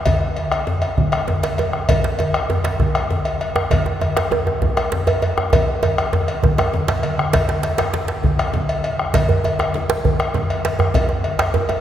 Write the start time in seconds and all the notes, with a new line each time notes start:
0.06 bombo low, cowbell, djembe slap, high conga, djembe tone, low conga, djembe bass
0.37 cowbell
0.52 bombo rim, cowbell, djembe slap
0.67 djembe slap, djembe tone, high conga, djembe bass
0.82 bombo rim, cowbell
0.98 bombo low, high conga, low conga
1.12 bombo rim, cowbell
1.28 djembe slap, djembe tone, high conga, djembe bass
1.43 cowbell, djembe slap
1.58 cowbell, djembe tone
1.73 bombo rim, djembe slap
1.89 bombo low, cowbell, djembe slap, high conga, djembe tone, low conga, djembe bass
2.04 djembe slap
2.19 cowbell, djembe tone
2.34 bombo rim, cowbell, djembe slap
2.50 djembe slap, djembe tone, high conga, djembe bass
2.64 bombo rim, cowbell, djembe slap
2.80 bombo low, high conga, djembe tone, low conga
2.95 bombo rim, cowbell
3.10 djembe slap, high conga, djembe tone, djembe bass
3.25 cowbell
3.41 cowbell
3.55 bombo rim, djembe slap, djembe tone
3.71 bombo low, cowbell, djembe slap, high conga, djembe tone, low conga, djembe bass
3.86 djembe tone
4.01 cowbell, djembe tone
4.16 bombo rim, cowbell, djembe slap
4.31 djembe slap, high conga, djembe tone, djembe bass
4.47 bombo rim, djembe tone
4.62 bombo low, djembe tone, high conga, low conga
4.77 bombo rim, cowbell, djembe tone
4.92 djembe slap, high conga, djembe tone, djembe bass
5.07 cowbell, djembe tone
5.22 cowbell, djembe tone
5.38 bombo rim, djembe slap, djembe tone
5.53 bombo low, cowbell, djembe slap, djembe tone, high conga, low conga, djembe bass
5.83 cowbell, djembe tone, high conga
5.98 bombo rim, cowbell
6.13 djembe slap, djembe tone, djembe bass
6.28 cowbell
6.43 bombo low, high conga, djembe tone, low conga
6.58 bombo rim, cowbell, high conga, djembe tone
6.73 djembe slap, djembe tone, low conga, djembe bass
6.88 cowbell, djembe slap, low conga
7.03 cowbell, djembe slap, high conga
7.18 bombo rim, high conga
7.33 bombo low, cowbell, djembe slap, high conga, djembe tone, low conga, djembe bass
7.49 djembe slap
7.63 cowbell, djembe slap
7.78 bombo rim, cowbell, djembe slap
7.94 djembe slap, high conga, djembe tone
8.08 djembe slap
8.24 bombo low, high conga, djembe bass
8.39 bombo rim, cowbell
8.54 djembe slap, djembe tone, high conga, low conga
8.69 cowbell, djembe slap
8.84 cowbell
8.99 bombo rim, djembe slap
9.14 bombo low, cowbell, djembe slap, high conga, djembe tone, low conga, djembe bass
9.29 djembe bass
9.44 cowbell, djembe slap, djembe tone
9.59 bombo rim, cowbell, djembe tone
9.74 djembe slap, high conga, djembe tone, low conga
9.90 djembe slap
10.04 bombo low, high conga, djembe bass
10.20 bombo rim, cowbell, djembe tone
10.34 djembe slap, djembe tone, high conga, low conga
10.50 cowbell, djembe slap
10.65 cowbell, djembe slap
10.79 bombo rim, djembe slap, djembe bass
10.94 bombo low, cowbell, djembe slap, high conga, djembe tone, low conga, djembe bass
11.09 djembe tone
11.24 cowbell, djembe slap
11.39 bombo rim, cowbell, djembe slap
11.54 djembe slap, high conga, djembe tone, low conga, djembe bass
11.69 cowbell, djembe tone